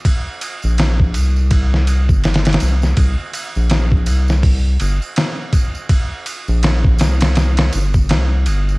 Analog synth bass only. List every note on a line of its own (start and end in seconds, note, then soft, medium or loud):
0.64 1.17 A#1 medium
1.16 2.11 C2 medium
2.10 2.58 G1 medium
2.62 2.94 C2 medium
2.97 3.16 C2 medium
3.56 4.10 A#1 medium
4.08 4.78 C2 medium
4.81 5.00 G1 medium
6.48 7.02 A#1 loud
7.00 7.70 C2 medium
7.75 8.12 G1 loud
8.10 8.48 C2 medium
8.47 8.78 G1 medium